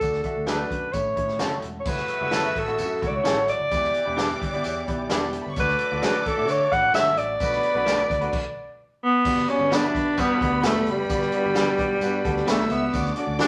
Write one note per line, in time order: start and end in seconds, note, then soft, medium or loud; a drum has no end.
0.00 0.19 D2 medium
0.00 0.66 D3 medium
0.00 0.19 A3 medium
0.00 0.19 D4 medium
0.00 0.19 F#4 medium
0.00 0.20 A4 loud
0.00 0.19 D5 medium
0.00 kick medium
0.00 closed hi-hat medium
0.00 tambourine medium
0.12 snare soft
0.23 0.52 A3 medium
0.23 0.51 D4 medium
0.23 0.52 F#4 medium
0.23 0.49 A4 medium
0.23 0.51 E5 medium
0.23 kick medium
0.23 closed hi-hat medium
0.36 0.63 D2 medium
0.47 0.59 D4 medium
0.47 0.59 F#4 medium
0.47 0.59 A4 medium
0.47 0.95 B4 medium
0.47 0.60 D5 medium
0.47 snare medium
0.47 closed hi-hat medium
0.47 tambourine medium
0.59 0.86 A3 medium
0.59 0.86 D4 medium
0.59 0.86 F#4 medium
0.59 0.86 D5 medium
0.71 0.88 F#2 medium
0.71 kick medium
0.71 closed hi-hat medium
0.93 1.11 A1 loud
0.93 1.59 A2 medium
0.93 1.11 A3 medium
0.93 1.12 C#4 medium
0.93 1.12 E4 medium
0.93 1.63 C#5 medium
0.93 1.12 C#5 medium
0.93 kick medium
0.93 closed hi-hat medium
0.93 tambourine medium
1.16 1.41 A2 loud
1.16 1.34 A3 medium
1.16 1.34 C#4 medium
1.16 1.34 E4 medium
1.16 1.35 C#5 medium
1.16 kick medium
1.16 closed hi-hat medium
1.28 snare soft
1.38 1.58 F#1 medium
1.38 1.75 A3 medium
1.38 1.45 C4 soft
1.38 1.51 C#4 medium
1.38 1.75 E4 medium
1.38 1.52 E4 medium
1.38 1.75 F#4 medium
1.38 1.52 A4 medium
1.38 1.52 C#5 medium
1.38 snare loud
1.38 closed hi-hat medium
1.38 tambourine medium
1.43 1.78 C#4 medium
1.62 1.81 E1 medium
1.62 closed hi-hat medium
1.80 1.90 C#5 medium
1.85 2.03 F#1 loud
1.85 3.45 C#3 medium
1.85 3.45 F#3 medium
1.85 2.13 A3 medium
1.85 3.45 A3 medium
1.85 2.13 E4 medium
1.85 2.13 F#4 medium
1.85 3.45 F#4 medium
1.85 2.60 B4 loud
1.85 2.13 C#5 medium
1.85 3.45 E5 medium
1.85 3.45 E6 medium
1.85 kick loud
1.85 crash medium
1.85 tambourine medium
1.97 snare soft
2.08 closed hi-hat medium
2.21 2.47 F#1 medium
2.21 2.27 G3 medium
2.21 2.57 E4 medium
2.21 2.57 F#4 medium
2.21 2.57 E5 medium
2.26 2.59 A3 medium
2.31 2.43 C#4 medium
2.31 2.44 E4 medium
2.31 2.44 A4 medium
2.31 2.44 C#5 medium
2.31 snare loud
2.31 closed hi-hat medium
2.31 tambourine medium
2.56 2.80 A1 medium
2.56 3.09 A4 medium
2.56 kick medium
2.56 closed hi-hat medium
2.67 2.94 A3 medium
2.67 2.94 E4 medium
2.67 2.94 F#4 medium
2.67 2.94 C#5 medium
2.67 closed hi-hat soft
2.78 3.04 F#2 medium
2.78 closed hi-hat medium
2.78 tambourine medium
3.01 3.20 C#2 medium
3.01 3.28 A3 medium
3.01 3.28 E4 medium
3.01 3.29 F#4 medium
3.01 3.29 C#5 medium
3.01 kick medium
3.01 closed hi-hat medium
3.08 3.17 D5 medium
3.16 3.49 C#5 medium
3.24 3.52 A1 medium
3.24 3.36 C#4 medium
3.24 3.36 E4 loud
3.24 3.36 A4 medium
3.24 3.37 C#5 medium
3.24 snare loud
3.24 closed hi-hat medium
3.24 tambourine medium
3.36 3.63 A3 medium
3.36 3.63 E4 medium
3.36 3.63 F#4 medium
3.36 3.63 C#5 medium
3.48 4.37 D5 loud
3.48 closed hi-hat medium
3.60 3.68 F#1 medium
3.71 3.89 E1 loud
3.71 4.36 E3 medium
3.71 5.30 E3 medium
3.71 5.30 G3 medium
3.71 3.98 B3 medium
3.71 5.30 D4 medium
3.71 3.98 E4 medium
3.71 3.98 G4 medium
3.71 5.30 G4 medium
3.71 3.98 D5 medium
3.71 5.03 D5 medium
3.71 5.03 D6 loud
3.71 kick loud
3.71 closed hi-hat medium
3.71 tambourine medium
3.83 snare soft
3.94 closed hi-hat medium
4.05 4.33 E1 loud
4.05 4.41 B3 medium
4.05 4.41 E4 medium
4.05 4.41 G4 medium
4.05 4.42 D5 medium
4.16 4.28 D4 medium
4.16 4.29 G4 medium
4.16 4.29 B4 medium
4.16 4.29 D5 medium
4.16 snare medium
4.16 closed hi-hat medium
4.16 tambourine medium
4.31 closed hi-hat soft
4.42 4.59 G1 medium
4.42 kick medium
4.42 closed hi-hat medium
4.53 4.80 B3 loud
4.53 4.80 E4 medium
4.53 4.80 G4 medium
4.53 4.79 D5 loud
4.53 closed hi-hat soft
4.64 4.82 E2 loud
4.64 closed hi-hat medium
4.64 tambourine medium
4.87 5.05 B1 medium
4.87 5.14 B3 medium
4.87 5.14 E4 medium
4.87 5.14 G4 medium
4.87 5.14 D5 medium
4.87 kick medium
4.87 closed hi-hat medium
5.10 5.37 E1 medium
5.10 5.21 D4 loud
5.10 5.18 E4 medium
5.10 5.22 G4 loud
5.10 5.22 B4 loud
5.10 5.22 D5 loud
5.10 5.18 E5 medium
5.10 snare loud
5.10 closed hi-hat medium
5.10 tambourine medium
5.18 5.48 B3 medium
5.18 5.48 E4 medium
5.18 5.26 F#4 medium
5.18 5.48 G4 medium
5.18 5.49 D5 medium
5.18 5.26 F#5 medium
5.18 snare soft
5.26 5.34 G4 medium
5.26 5.33 G5 medium
5.33 5.41 A4 medium
5.33 5.41 A5 medium
5.33 closed hi-hat medium
5.41 5.48 B4 medium
5.41 5.49 B5 medium
5.46 5.58 G1 medium
5.46 5.56 C#5 medium
5.46 5.56 C#6 loud
5.56 5.74 D2 loud
5.56 6.22 D3 medium
5.56 7.15 F#3 medium
5.56 5.83 A3 medium
5.56 7.15 A3 medium
5.56 5.83 D4 medium
5.56 7.15 D4 medium
5.56 5.83 F#4 medium
5.56 7.15 A4 medium
5.56 5.84 C#5 medium
5.56 7.15 D5 loud
5.56 7.15 D6 loud
5.56 kick loud
5.56 closed hi-hat medium
5.56 tambourine medium
5.60 6.01 B4 loud
5.68 snare soft
5.79 closed hi-hat medium
5.91 6.00 D2 medium
5.91 6.27 A3 medium
5.91 6.27 D4 medium
5.91 5.97 F4 medium
5.91 6.27 D5 medium
5.97 6.30 F#4 medium
6.02 6.29 F#2 medium
6.02 6.14 A3 medium
6.02 6.14 D4 medium
6.02 6.14 F#4 medium
6.02 6.29 B4 loud
6.02 6.15 C#5 loud
6.02 snare loud
6.02 closed hi-hat medium
6.02 tambourine medium
6.26 6.52 A4 loud
6.26 kick medium
6.26 closed hi-hat medium
6.36 6.48 A2 medium
6.36 6.64 A3 medium
6.36 6.63 D4 medium
6.36 6.64 F#4 medium
6.36 6.63 E5 medium
6.48 6.66 D3 loud
6.48 6.74 C#5 loud
6.48 closed hi-hat medium
6.48 tambourine medium
6.71 6.89 A1 medium
6.71 6.98 A3 medium
6.71 6.98 D4 medium
6.71 6.98 F#4 medium
6.71 6.98 B4 medium
6.71 6.94 F#5 loud
6.71 kick medium
6.71 closed hi-hat medium
6.93 7.17 G1 medium
6.93 7.05 A3 medium
6.93 7.06 D4 medium
6.93 7.06 F#4 loud
6.93 7.06 C#5 loud
6.93 7.20 E5 loud
6.93 snare loud
6.93 closed hi-hat medium
6.93 tambourine medium
7.06 7.33 A3 medium
7.06 7.33 D4 medium
7.06 7.33 F#4 medium
7.06 7.33 C#5 medium
7.06 snare soft
7.17 7.35 A1 medium
7.17 8.79 D5 loud
7.17 closed hi-hat medium
7.40 7.58 B1 loud
7.40 8.06 B2 medium
7.40 8.09 F#3 medium
7.40 7.68 A3 medium
7.40 8.08 B3 medium
7.40 8.09 D4 medium
7.40 7.68 D4 medium
7.40 7.68 F#4 medium
7.40 8.08 B4 medium
7.40 7.68 B4 medium
7.40 8.08 B5 loud
7.40 kick loud
7.40 closed hi-hat medium
7.40 tambourine medium
7.52 snare soft
7.63 closed hi-hat medium
7.74 8.01 B1 medium
7.74 8.10 A3 medium
7.74 7.80 C#4 medium
7.74 8.11 F#4 medium
7.74 8.11 B4 loud
7.80 8.13 D4 medium
7.86 7.98 A3 medium
7.86 7.98 D4 loud
7.86 7.98 F#4 loud
7.86 7.99 B4 loud
7.86 snare medium
7.86 closed hi-hat medium
7.86 tambourine medium
7.99 closed hi-hat soft
8.10 8.28 D2 medium
8.10 kick medium
8.10 closed hi-hat medium
8.21 8.33 A3 loud
8.21 8.33 D4 medium
8.21 8.33 F#4 medium
8.21 8.33 B4 loud
8.21 closed hi-hat soft
8.33 kick loud
8.33 crash loud
9.03 9.51 B3 loud
9.25 9.43 G1 loud
9.25 9.90 G2 medium
9.25 9.43 B3 medium
9.25 9.43 D4 medium
9.25 9.43 F#4 medium
9.25 9.43 G4 medium
9.25 12.44 B4 medium
9.25 9.43 D5 medium
9.25 12.44 B5 medium
9.25 kick loud
9.25 crash loud
9.25 tambourine medium
9.37 snare soft
9.47 9.75 B3 medium
9.47 9.76 C#4 loud
9.47 9.75 D4 medium
9.47 9.75 F#4 medium
9.47 9.75 G4 medium
9.47 9.75 D5 medium
9.47 closed hi-hat medium
9.59 9.86 G1 medium
9.71 9.82 B3 medium
9.71 9.83 D4 loud
9.71 10.21 D4 loud
9.71 9.83 F#4 loud
9.71 9.83 B4 loud
9.71 snare loud
9.71 closed hi-hat medium
9.71 tambourine medium
9.82 10.09 B3 medium
9.82 10.09 D4 medium
9.82 10.10 F#4 medium
9.82 10.09 G4 medium
9.82 10.10 E5 medium
9.94 10.12 B1 medium
9.94 kick medium
9.94 closed hi-hat medium
10.16 10.36 G2 loud
10.16 10.46 G3 medium
10.16 10.46 B3 medium
10.16 10.35 B3 medium
10.16 10.65 B3 loud
10.16 10.35 D4 medium
10.16 10.46 F#4 medium
10.16 10.35 F#4 medium
10.16 10.35 G4 medium
10.16 10.46 B4 loud
10.16 10.35 D5 medium
10.16 kick medium
10.16 closed hi-hat medium
10.16 tambourine medium
10.41 10.66 D2 medium
10.41 10.68 B3 medium
10.41 10.68 D4 medium
10.41 10.68 F#4 medium
10.41 10.68 G4 medium
10.41 10.68 D5 medium
10.41 kick loud
10.41 closed hi-hat medium
10.62 10.81 E1 loud
10.62 10.74 B3 medium
10.62 10.74 D4 loud
10.62 10.75 F#4 loud
10.62 10.75 B4 loud
10.62 snare loud
10.62 closed hi-hat medium
10.62 tambourine loud
10.66 10.92 A3 loud
10.75 11.02 B3 medium
10.75 11.02 D4 medium
10.75 11.02 F#4 medium
10.75 11.02 G4 medium
10.75 11.02 D5 medium
10.86 11.04 F#1 medium
10.86 closed hi-hat medium
10.91 12.50 G3 loud
11.09 11.27 G1 loud
11.09 11.75 G2 medium
11.09 11.27 B3 medium
11.09 11.28 D4 medium
11.09 11.27 F#4 medium
11.09 11.27 G4 medium
11.09 11.27 D5 medium
11.09 kick loud
11.09 closed hi-hat medium
11.09 tambourine medium
11.21 snare soft
11.32 11.60 B3 medium
11.32 11.60 D4 medium
11.32 11.60 F#4 medium
11.32 11.60 G4 medium
11.32 11.60 D5 medium
11.32 closed hi-hat medium
11.46 11.71 G1 medium
11.55 11.67 B3 medium
11.55 11.67 D4 medium
11.55 11.67 F#4 loud
11.55 11.67 B4 medium
11.55 snare loud
11.55 closed hi-hat medium
11.55 tambourine medium
11.67 11.94 B3 medium
11.67 11.94 D4 medium
11.67 11.94 F#4 medium
11.67 11.94 G4 medium
11.67 11.94 D5 loud
11.78 11.96 B1 medium
11.78 kick medium
11.78 closed hi-hat medium
12.01 12.19 G2 medium
12.01 12.19 B3 medium
12.01 12.20 D4 medium
12.01 12.20 F#4 medium
12.01 12.20 G4 medium
12.01 12.20 B4 loud
12.01 closed hi-hat medium
12.01 tambourine medium
12.24 12.42 D2 medium
12.24 12.51 B3 medium
12.24 12.51 D4 medium
12.24 12.51 F#4 medium
12.24 12.51 G4 medium
12.24 12.52 A4 loud
12.24 kick medium
12.24 closed hi-hat medium
12.36 snare soft
12.46 12.65 B1 medium
12.46 12.58 B3 loud
12.46 12.59 D4 medium
12.46 12.59 F#4 loud
12.46 12.59 B4 loud
12.46 12.93 E5 medium
12.46 12.93 E6 medium
12.46 snare loud
12.46 closed hi-hat medium
12.46 tambourine loud
12.50 12.74 A3 loud
12.58 12.86 B3 medium
12.58 12.86 D4 medium
12.58 12.86 F#4 medium
12.58 12.86 G4 medium
12.58 12.86 C#5 medium
12.58 snare soft
12.70 12.88 C#2 medium
12.70 13.14 B3 loud
12.70 closed hi-hat medium
12.92 13.11 D2 loud
12.92 13.47 D3 medium
12.92 13.11 C#4 medium
12.92 13.11 D4 medium
12.92 13.11 F#4 medium
12.92 13.11 A4 medium
12.92 13.11 D5 medium
12.92 13.47 D5 medium
12.92 13.47 D6 medium
12.92 kick loud
12.92 closed hi-hat medium
12.92 tambourine medium
13.05 snare soft
13.16 13.44 C#4 medium
13.16 13.44 D4 medium
13.16 13.44 F#4 medium
13.16 13.44 A4 medium
13.16 13.44 D5 loud
13.16 closed hi-hat medium
13.27 13.36 D2 loud
13.39 13.47 C#4 loud
13.39 13.47 D4 loud
13.39 13.47 F#4 medium
13.39 13.47 A4 medium
13.39 13.47 C#5 medium
13.39 snare loud
13.39 closed hi-hat medium
13.39 tambourine medium